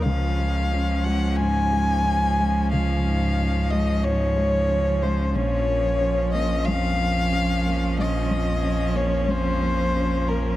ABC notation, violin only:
X:1
M:4/4
L:1/8
Q:1/4=91
K:Db
V:1 name="Violin"
f3 g a4 | f3 e d3 c | d3 e f4 | e3 d c3 B |]